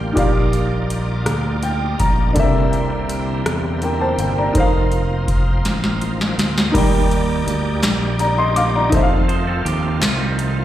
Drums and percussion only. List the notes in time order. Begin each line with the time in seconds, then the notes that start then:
0.17 kick, closed hi-hat
0.53 closed hi-hat
0.90 closed hi-hat
1.26 cross-stick, closed hi-hat
1.63 closed hi-hat
2.00 kick, closed hi-hat
2.36 kick, closed hi-hat
2.73 closed hi-hat
3.09 closed hi-hat
3.46 cross-stick, closed hi-hat
3.82 closed hi-hat
4.19 closed hi-hat
4.55 kick, closed hi-hat
4.92 closed hi-hat
5.28 kick, closed hi-hat
5.65 snare, closed hi-hat
5.84 snare
6.01 closed hi-hat
6.21 snare
6.39 snare, closed hi-hat
6.58 snare
6.75 kick, closed hi-hat, crash
7.11 closed hi-hat
7.48 closed hi-hat
7.83 snare, clap, closed hi-hat
8.19 closed hi-hat
8.56 closed hi-hat
8.92 kick, closed hi-hat
9.29 closed hi-hat
9.66 closed hi-hat
10.02 snare, clap, closed hi-hat
10.39 closed hi-hat